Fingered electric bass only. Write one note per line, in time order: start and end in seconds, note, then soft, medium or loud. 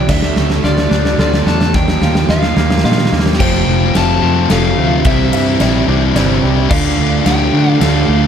0.09 0.35 D2 loud
0.37 0.63 D2 medium
0.64 0.90 D2 loud
0.91 1.18 D2 medium
1.18 1.45 D2 medium
1.46 1.75 E2 medium
1.75 2.01 D#2 loud
2.01 2.28 D#2 loud
2.29 2.55 D#2 loud
2.57 2.83 D#2 medium
2.84 3.10 A#2 loud
3.12 3.38 D#2 medium
3.40 3.63 F1 loud
3.67 3.90 F1 medium
3.95 4.18 F1 medium
4.23 4.46 F2 medium
4.50 4.73 F1 loud
4.78 5.01 D2 medium
5.05 5.28 C2 loud
5.33 5.56 G2 medium
5.60 5.83 A#1 medium
5.88 6.11 C2 loud
6.16 6.39 G1 medium
6.43 6.66 C2 medium
6.71 6.94 D2 loud
6.98 7.21 D2 loud
7.26 7.49 D2 loud
7.53 7.76 D3 medium
7.81 8.03 D2 medium
8.09 8.27 D2 medium